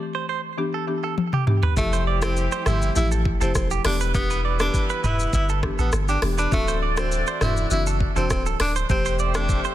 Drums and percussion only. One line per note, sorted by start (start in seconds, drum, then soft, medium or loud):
1.18 high tom medium
1.33 mid tom medium
1.47 mid tom loud
1.63 floor tom medium
1.77 kick loud
1.77 shaker medium
1.93 shaker medium
2.22 cross-stick loud
2.22 shaker medium
2.37 shaker medium
2.52 shaker soft
2.66 cross-stick loud
2.66 mid tom medium
2.66 shaker medium
2.82 shaker medium
2.96 shaker medium
3.12 shaker medium
3.25 kick medium
3.41 shaker medium
3.55 kick loud
3.55 cross-stick loud
3.55 shaker medium
3.71 shaker medium
3.85 cross-stick medium
3.85 open hi-hat medium
4.01 shaker medium
4.15 kick loud
4.15 shaker medium
4.30 shaker medium
4.60 cross-stick loud
4.60 shaker medium
4.74 kick medium
4.74 shaker medium
4.89 shaker soft
5.04 mid tom medium
5.04 shaker medium
5.19 shaker medium
5.33 kick loud
5.33 shaker medium
5.49 shaker medium
5.63 kick medium
5.63 cross-stick loud
5.79 shaker medium
5.92 cross-stick loud
5.92 shaker medium
6.08 shaker medium
6.22 cross-stick medium
6.22 open hi-hat medium
6.38 shaker medium
6.52 kick loud
6.52 shaker medium
6.68 shaker medium
6.97 cross-stick loud
6.97 shaker medium
7.12 shaker medium
7.27 shaker medium
7.41 cross-stick loud
7.41 mid tom medium
7.41 shaker medium
7.57 shaker medium
7.71 shaker medium
7.86 shaker medium
8.00 kick medium
8.16 shaker medium
8.30 kick loud
8.30 cross-stick loud
8.30 shaker medium
8.46 shaker medium
8.60 cross-stick medium
8.60 open hi-hat medium
8.76 shaker medium
8.90 kick loud
8.90 shaker medium
9.05 shaker medium
9.19 shaker medium
9.35 cross-stick loud
9.35 shaker medium
9.49 kick loud
9.49 shaker medium
9.64 shaker medium